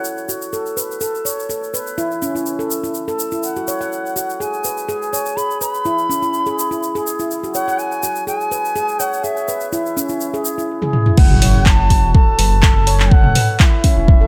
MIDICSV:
0, 0, Header, 1, 6, 480
1, 0, Start_track
1, 0, Key_signature, 3, "minor"
1, 0, Tempo, 483871
1, 1488, Time_signature, 4, 2, 24, 8
1, 14157, End_track
2, 0, Start_track
2, 0, Title_t, "Bansuri"
2, 0, Program_c, 0, 73
2, 3410, Note_on_c, 0, 78, 81
2, 4370, Note_on_c, 0, 80, 90
2, 4385, Note_off_c, 0, 78, 0
2, 5082, Note_off_c, 0, 80, 0
2, 5088, Note_on_c, 0, 80, 90
2, 5323, Note_on_c, 0, 83, 100
2, 5338, Note_off_c, 0, 80, 0
2, 5566, Note_off_c, 0, 83, 0
2, 5570, Note_on_c, 0, 83, 100
2, 6969, Note_off_c, 0, 83, 0
2, 7482, Note_on_c, 0, 78, 91
2, 7724, Note_on_c, 0, 80, 98
2, 7739, Note_off_c, 0, 78, 0
2, 8201, Note_off_c, 0, 80, 0
2, 8207, Note_on_c, 0, 80, 104
2, 8922, Note_on_c, 0, 78, 94
2, 8937, Note_off_c, 0, 80, 0
2, 9164, Note_on_c, 0, 76, 93
2, 9179, Note_off_c, 0, 78, 0
2, 9639, Note_off_c, 0, 76, 0
2, 9645, Note_on_c, 0, 76, 77
2, 10567, Note_off_c, 0, 76, 0
2, 11084, Note_on_c, 0, 78, 105
2, 11565, Note_on_c, 0, 81, 112
2, 11580, Note_off_c, 0, 78, 0
2, 12043, Note_off_c, 0, 81, 0
2, 12049, Note_on_c, 0, 81, 113
2, 13011, Note_on_c, 0, 78, 112
2, 13026, Note_off_c, 0, 81, 0
2, 13491, Note_on_c, 0, 76, 95
2, 13506, Note_off_c, 0, 78, 0
2, 14157, Note_off_c, 0, 76, 0
2, 14157, End_track
3, 0, Start_track
3, 0, Title_t, "Handpan"
3, 0, Program_c, 1, 114
3, 286, Note_on_c, 1, 66, 66
3, 356, Note_off_c, 1, 66, 0
3, 525, Note_on_c, 1, 69, 71
3, 647, Note_off_c, 1, 69, 0
3, 763, Note_on_c, 1, 71, 66
3, 886, Note_off_c, 1, 71, 0
3, 1001, Note_on_c, 1, 69, 83
3, 1073, Note_off_c, 1, 69, 0
3, 1242, Note_on_c, 1, 73, 63
3, 1314, Note_off_c, 1, 73, 0
3, 1483, Note_on_c, 1, 69, 68
3, 1607, Note_off_c, 1, 69, 0
3, 1724, Note_on_c, 1, 71, 67
3, 1847, Note_off_c, 1, 71, 0
3, 1963, Note_on_c, 1, 64, 93
3, 2080, Note_off_c, 1, 64, 0
3, 2203, Note_on_c, 1, 61, 88
3, 2327, Note_off_c, 1, 61, 0
3, 2332, Note_on_c, 1, 64, 67
3, 2435, Note_off_c, 1, 64, 0
3, 2570, Note_on_c, 1, 69, 85
3, 2674, Note_off_c, 1, 69, 0
3, 2813, Note_on_c, 1, 64, 72
3, 2915, Note_off_c, 1, 64, 0
3, 3054, Note_on_c, 1, 69, 90
3, 3156, Note_off_c, 1, 69, 0
3, 3294, Note_on_c, 1, 64, 69
3, 3396, Note_off_c, 1, 64, 0
3, 3537, Note_on_c, 1, 66, 66
3, 3643, Note_off_c, 1, 66, 0
3, 3650, Note_on_c, 1, 73, 65
3, 3718, Note_off_c, 1, 73, 0
3, 3778, Note_on_c, 1, 78, 64
3, 3883, Note_off_c, 1, 78, 0
3, 4128, Note_on_c, 1, 66, 66
3, 4197, Note_off_c, 1, 66, 0
3, 4368, Note_on_c, 1, 68, 72
3, 4489, Note_off_c, 1, 68, 0
3, 4609, Note_on_c, 1, 71, 65
3, 4730, Note_off_c, 1, 71, 0
3, 4847, Note_on_c, 1, 68, 92
3, 4916, Note_off_c, 1, 68, 0
3, 5090, Note_on_c, 1, 73, 67
3, 5158, Note_off_c, 1, 73, 0
3, 5327, Note_on_c, 1, 68, 72
3, 5448, Note_off_c, 1, 68, 0
3, 5567, Note_on_c, 1, 71, 66
3, 5689, Note_off_c, 1, 71, 0
3, 5808, Note_on_c, 1, 64, 95
3, 5922, Note_off_c, 1, 64, 0
3, 6046, Note_on_c, 1, 61, 89
3, 6168, Note_off_c, 1, 61, 0
3, 6174, Note_on_c, 1, 64, 73
3, 6276, Note_off_c, 1, 64, 0
3, 6414, Note_on_c, 1, 68, 85
3, 6516, Note_off_c, 1, 68, 0
3, 6656, Note_on_c, 1, 64, 73
3, 6757, Note_off_c, 1, 64, 0
3, 6897, Note_on_c, 1, 68, 94
3, 6998, Note_off_c, 1, 68, 0
3, 7137, Note_on_c, 1, 64, 69
3, 7238, Note_off_c, 1, 64, 0
3, 7375, Note_on_c, 1, 66, 69
3, 7482, Note_off_c, 1, 66, 0
3, 7488, Note_on_c, 1, 73, 67
3, 7557, Note_off_c, 1, 73, 0
3, 7617, Note_on_c, 1, 78, 64
3, 7723, Note_off_c, 1, 78, 0
3, 7970, Note_on_c, 1, 66, 69
3, 8038, Note_off_c, 1, 66, 0
3, 8206, Note_on_c, 1, 68, 75
3, 8328, Note_off_c, 1, 68, 0
3, 8447, Note_on_c, 1, 71, 69
3, 8568, Note_off_c, 1, 71, 0
3, 8686, Note_on_c, 1, 68, 91
3, 8756, Note_off_c, 1, 68, 0
3, 8927, Note_on_c, 1, 73, 66
3, 8996, Note_off_c, 1, 73, 0
3, 9166, Note_on_c, 1, 68, 73
3, 9288, Note_off_c, 1, 68, 0
3, 9407, Note_on_c, 1, 71, 71
3, 9529, Note_off_c, 1, 71, 0
3, 9648, Note_on_c, 1, 64, 97
3, 9763, Note_off_c, 1, 64, 0
3, 9888, Note_on_c, 1, 61, 94
3, 10009, Note_off_c, 1, 61, 0
3, 10014, Note_on_c, 1, 64, 75
3, 10116, Note_off_c, 1, 64, 0
3, 10256, Note_on_c, 1, 68, 91
3, 10357, Note_off_c, 1, 68, 0
3, 10497, Note_on_c, 1, 64, 72
3, 10597, Note_off_c, 1, 64, 0
3, 10736, Note_on_c, 1, 68, 97
3, 10837, Note_off_c, 1, 68, 0
3, 10977, Note_on_c, 1, 64, 71
3, 11077, Note_off_c, 1, 64, 0
3, 11214, Note_on_c, 1, 66, 74
3, 11322, Note_off_c, 1, 66, 0
3, 11330, Note_on_c, 1, 73, 74
3, 11397, Note_off_c, 1, 73, 0
3, 11454, Note_on_c, 1, 78, 71
3, 11562, Note_off_c, 1, 78, 0
3, 11809, Note_on_c, 1, 66, 76
3, 11877, Note_off_c, 1, 66, 0
3, 12048, Note_on_c, 1, 69, 79
3, 12169, Note_off_c, 1, 69, 0
3, 12287, Note_on_c, 1, 71, 74
3, 12408, Note_off_c, 1, 71, 0
3, 12527, Note_on_c, 1, 69, 102
3, 12596, Note_off_c, 1, 69, 0
3, 12769, Note_on_c, 1, 73, 71
3, 12837, Note_off_c, 1, 73, 0
3, 13248, Note_on_c, 1, 71, 73
3, 13369, Note_off_c, 1, 71, 0
3, 13489, Note_on_c, 1, 64, 102
3, 13603, Note_off_c, 1, 64, 0
3, 13727, Note_on_c, 1, 61, 102
3, 13848, Note_off_c, 1, 61, 0
3, 13857, Note_on_c, 1, 64, 77
3, 13958, Note_off_c, 1, 64, 0
3, 14097, Note_on_c, 1, 69, 98
3, 14157, Note_off_c, 1, 69, 0
3, 14157, End_track
4, 0, Start_track
4, 0, Title_t, "Detuned saw bass"
4, 0, Program_c, 2, 39
4, 11087, Note_on_c, 2, 30, 103
4, 11937, Note_on_c, 2, 28, 98
4, 11952, Note_off_c, 2, 30, 0
4, 12029, Note_off_c, 2, 28, 0
4, 12289, Note_on_c, 2, 30, 104
4, 13218, Note_off_c, 2, 30, 0
4, 13858, Note_on_c, 2, 28, 97
4, 14157, Note_off_c, 2, 28, 0
4, 14157, End_track
5, 0, Start_track
5, 0, Title_t, "Sub drop"
5, 0, Program_c, 3, 103
5, 11088, Note_on_c, 3, 60, 73
5, 13008, Note_off_c, 3, 60, 0
5, 14157, End_track
6, 0, Start_track
6, 0, Title_t, "Drums"
6, 42, Note_on_c, 9, 82, 50
6, 142, Note_off_c, 9, 82, 0
6, 176, Note_on_c, 9, 82, 21
6, 275, Note_off_c, 9, 82, 0
6, 289, Note_on_c, 9, 82, 88
6, 388, Note_off_c, 9, 82, 0
6, 414, Note_on_c, 9, 82, 40
6, 514, Note_off_c, 9, 82, 0
6, 525, Note_on_c, 9, 82, 49
6, 625, Note_off_c, 9, 82, 0
6, 655, Note_on_c, 9, 82, 26
6, 754, Note_off_c, 9, 82, 0
6, 769, Note_on_c, 9, 82, 85
6, 868, Note_off_c, 9, 82, 0
6, 905, Note_on_c, 9, 82, 39
6, 999, Note_off_c, 9, 82, 0
6, 999, Note_on_c, 9, 82, 55
6, 1098, Note_off_c, 9, 82, 0
6, 1139, Note_on_c, 9, 82, 24
6, 1239, Note_off_c, 9, 82, 0
6, 1248, Note_on_c, 9, 82, 81
6, 1347, Note_off_c, 9, 82, 0
6, 1382, Note_on_c, 9, 82, 34
6, 1481, Note_off_c, 9, 82, 0
6, 1486, Note_on_c, 9, 82, 49
6, 1585, Note_off_c, 9, 82, 0
6, 1620, Note_on_c, 9, 82, 24
6, 1719, Note_off_c, 9, 82, 0
6, 1729, Note_on_c, 9, 82, 89
6, 1828, Note_off_c, 9, 82, 0
6, 1852, Note_on_c, 9, 82, 38
6, 1951, Note_off_c, 9, 82, 0
6, 1966, Note_on_c, 9, 82, 44
6, 2065, Note_off_c, 9, 82, 0
6, 2095, Note_on_c, 9, 82, 22
6, 2195, Note_off_c, 9, 82, 0
6, 2204, Note_on_c, 9, 82, 83
6, 2303, Note_off_c, 9, 82, 0
6, 2341, Note_on_c, 9, 82, 38
6, 2440, Note_off_c, 9, 82, 0
6, 2442, Note_on_c, 9, 82, 49
6, 2541, Note_off_c, 9, 82, 0
6, 2578, Note_on_c, 9, 82, 22
6, 2677, Note_off_c, 9, 82, 0
6, 2685, Note_on_c, 9, 82, 85
6, 2784, Note_off_c, 9, 82, 0
6, 2818, Note_on_c, 9, 82, 34
6, 2917, Note_off_c, 9, 82, 0
6, 2920, Note_on_c, 9, 82, 45
6, 3020, Note_off_c, 9, 82, 0
6, 3057, Note_on_c, 9, 82, 27
6, 3156, Note_off_c, 9, 82, 0
6, 3167, Note_on_c, 9, 82, 81
6, 3266, Note_off_c, 9, 82, 0
6, 3288, Note_on_c, 9, 82, 32
6, 3388, Note_off_c, 9, 82, 0
6, 3403, Note_on_c, 9, 82, 49
6, 3503, Note_off_c, 9, 82, 0
6, 3532, Note_on_c, 9, 82, 23
6, 3632, Note_off_c, 9, 82, 0
6, 3647, Note_on_c, 9, 82, 83
6, 3746, Note_off_c, 9, 82, 0
6, 3781, Note_on_c, 9, 82, 34
6, 3880, Note_off_c, 9, 82, 0
6, 3894, Note_on_c, 9, 82, 45
6, 3993, Note_off_c, 9, 82, 0
6, 4028, Note_on_c, 9, 82, 21
6, 4127, Note_off_c, 9, 82, 0
6, 4132, Note_on_c, 9, 82, 86
6, 4231, Note_off_c, 9, 82, 0
6, 4261, Note_on_c, 9, 82, 37
6, 4360, Note_off_c, 9, 82, 0
6, 4378, Note_on_c, 9, 82, 52
6, 4477, Note_off_c, 9, 82, 0
6, 4499, Note_on_c, 9, 82, 21
6, 4599, Note_off_c, 9, 82, 0
6, 4605, Note_on_c, 9, 82, 72
6, 4704, Note_off_c, 9, 82, 0
6, 4735, Note_on_c, 9, 82, 36
6, 4834, Note_off_c, 9, 82, 0
6, 4848, Note_on_c, 9, 82, 41
6, 4947, Note_off_c, 9, 82, 0
6, 4983, Note_on_c, 9, 82, 26
6, 5082, Note_off_c, 9, 82, 0
6, 5096, Note_on_c, 9, 82, 71
6, 5195, Note_off_c, 9, 82, 0
6, 5214, Note_on_c, 9, 82, 40
6, 5313, Note_off_c, 9, 82, 0
6, 5337, Note_on_c, 9, 82, 48
6, 5436, Note_off_c, 9, 82, 0
6, 5462, Note_on_c, 9, 82, 25
6, 5561, Note_off_c, 9, 82, 0
6, 5570, Note_on_c, 9, 82, 80
6, 5669, Note_off_c, 9, 82, 0
6, 5695, Note_on_c, 9, 82, 34
6, 5794, Note_off_c, 9, 82, 0
6, 5803, Note_on_c, 9, 82, 44
6, 5902, Note_off_c, 9, 82, 0
6, 5933, Note_on_c, 9, 82, 24
6, 6032, Note_off_c, 9, 82, 0
6, 6061, Note_on_c, 9, 82, 78
6, 6160, Note_off_c, 9, 82, 0
6, 6174, Note_on_c, 9, 82, 33
6, 6273, Note_off_c, 9, 82, 0
6, 6284, Note_on_c, 9, 82, 45
6, 6384, Note_off_c, 9, 82, 0
6, 6409, Note_on_c, 9, 82, 23
6, 6508, Note_off_c, 9, 82, 0
6, 6536, Note_on_c, 9, 82, 88
6, 6635, Note_off_c, 9, 82, 0
6, 6664, Note_on_c, 9, 82, 33
6, 6763, Note_off_c, 9, 82, 0
6, 6774, Note_on_c, 9, 82, 44
6, 6874, Note_off_c, 9, 82, 0
6, 6900, Note_on_c, 9, 82, 22
6, 6999, Note_off_c, 9, 82, 0
6, 7013, Note_on_c, 9, 82, 71
6, 7112, Note_off_c, 9, 82, 0
6, 7138, Note_on_c, 9, 82, 37
6, 7237, Note_off_c, 9, 82, 0
6, 7252, Note_on_c, 9, 82, 43
6, 7351, Note_off_c, 9, 82, 0
6, 7379, Note_on_c, 9, 82, 24
6, 7478, Note_off_c, 9, 82, 0
6, 7484, Note_on_c, 9, 82, 80
6, 7583, Note_off_c, 9, 82, 0
6, 7622, Note_on_c, 9, 82, 34
6, 7722, Note_off_c, 9, 82, 0
6, 7728, Note_on_c, 9, 82, 43
6, 7827, Note_off_c, 9, 82, 0
6, 7855, Note_on_c, 9, 82, 22
6, 7954, Note_off_c, 9, 82, 0
6, 7965, Note_on_c, 9, 82, 86
6, 8064, Note_off_c, 9, 82, 0
6, 8091, Note_on_c, 9, 82, 37
6, 8190, Note_off_c, 9, 82, 0
6, 8212, Note_on_c, 9, 82, 46
6, 8312, Note_off_c, 9, 82, 0
6, 8339, Note_on_c, 9, 82, 23
6, 8438, Note_off_c, 9, 82, 0
6, 8450, Note_on_c, 9, 82, 82
6, 8549, Note_off_c, 9, 82, 0
6, 8581, Note_on_c, 9, 82, 33
6, 8680, Note_off_c, 9, 82, 0
6, 8687, Note_on_c, 9, 82, 40
6, 8786, Note_off_c, 9, 82, 0
6, 8812, Note_on_c, 9, 82, 25
6, 8911, Note_off_c, 9, 82, 0
6, 8927, Note_on_c, 9, 82, 75
6, 9026, Note_off_c, 9, 82, 0
6, 9060, Note_on_c, 9, 82, 32
6, 9159, Note_off_c, 9, 82, 0
6, 9166, Note_on_c, 9, 82, 50
6, 9265, Note_off_c, 9, 82, 0
6, 9294, Note_on_c, 9, 82, 24
6, 9393, Note_off_c, 9, 82, 0
6, 9406, Note_on_c, 9, 82, 82
6, 9505, Note_off_c, 9, 82, 0
6, 9529, Note_on_c, 9, 82, 30
6, 9629, Note_off_c, 9, 82, 0
6, 9648, Note_on_c, 9, 82, 43
6, 9747, Note_off_c, 9, 82, 0
6, 9781, Note_on_c, 9, 82, 25
6, 9880, Note_off_c, 9, 82, 0
6, 9894, Note_on_c, 9, 82, 85
6, 9993, Note_off_c, 9, 82, 0
6, 10008, Note_on_c, 9, 82, 35
6, 10107, Note_off_c, 9, 82, 0
6, 10123, Note_on_c, 9, 82, 47
6, 10222, Note_off_c, 9, 82, 0
6, 10256, Note_on_c, 9, 82, 23
6, 10356, Note_off_c, 9, 82, 0
6, 10366, Note_on_c, 9, 82, 83
6, 10465, Note_off_c, 9, 82, 0
6, 10502, Note_on_c, 9, 82, 37
6, 10601, Note_off_c, 9, 82, 0
6, 10731, Note_on_c, 9, 48, 48
6, 10831, Note_off_c, 9, 48, 0
6, 10845, Note_on_c, 9, 47, 65
6, 10945, Note_off_c, 9, 47, 0
6, 10972, Note_on_c, 9, 45, 71
6, 11071, Note_off_c, 9, 45, 0
6, 11085, Note_on_c, 9, 49, 102
6, 11087, Note_on_c, 9, 36, 123
6, 11184, Note_off_c, 9, 49, 0
6, 11186, Note_off_c, 9, 36, 0
6, 11215, Note_on_c, 9, 47, 78
6, 11314, Note_off_c, 9, 47, 0
6, 11327, Note_on_c, 9, 46, 99
6, 11327, Note_on_c, 9, 47, 85
6, 11427, Note_off_c, 9, 46, 0
6, 11427, Note_off_c, 9, 47, 0
6, 11567, Note_on_c, 9, 39, 103
6, 11568, Note_on_c, 9, 36, 110
6, 11666, Note_off_c, 9, 39, 0
6, 11667, Note_off_c, 9, 36, 0
6, 11808, Note_on_c, 9, 36, 61
6, 11808, Note_on_c, 9, 46, 89
6, 11907, Note_off_c, 9, 36, 0
6, 11907, Note_off_c, 9, 46, 0
6, 12048, Note_on_c, 9, 36, 114
6, 12148, Note_off_c, 9, 36, 0
6, 12288, Note_on_c, 9, 46, 95
6, 12387, Note_off_c, 9, 46, 0
6, 12525, Note_on_c, 9, 39, 101
6, 12529, Note_on_c, 9, 36, 112
6, 12624, Note_off_c, 9, 39, 0
6, 12628, Note_off_c, 9, 36, 0
6, 12767, Note_on_c, 9, 46, 90
6, 12866, Note_off_c, 9, 46, 0
6, 12893, Note_on_c, 9, 39, 58
6, 12992, Note_off_c, 9, 39, 0
6, 13010, Note_on_c, 9, 36, 126
6, 13109, Note_off_c, 9, 36, 0
6, 13133, Note_on_c, 9, 47, 72
6, 13232, Note_off_c, 9, 47, 0
6, 13247, Note_on_c, 9, 46, 93
6, 13247, Note_on_c, 9, 47, 76
6, 13346, Note_off_c, 9, 46, 0
6, 13346, Note_off_c, 9, 47, 0
6, 13488, Note_on_c, 9, 39, 110
6, 13490, Note_on_c, 9, 36, 123
6, 13588, Note_off_c, 9, 39, 0
6, 13589, Note_off_c, 9, 36, 0
6, 13728, Note_on_c, 9, 46, 94
6, 13730, Note_on_c, 9, 36, 64
6, 13827, Note_off_c, 9, 46, 0
6, 13829, Note_off_c, 9, 36, 0
6, 13970, Note_on_c, 9, 36, 127
6, 14069, Note_off_c, 9, 36, 0
6, 14157, End_track
0, 0, End_of_file